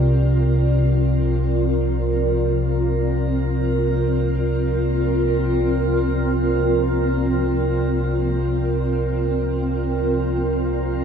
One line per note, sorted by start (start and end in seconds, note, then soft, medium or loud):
0.00 11.04 C2 medium
0.00 5.23 C3 medium
0.00 11.04 C3 medium
0.00 11.04 C4 medium
0.00 11.04 F4 medium
0.00 11.04 A#4 medium
0.00 11.04 D5 medium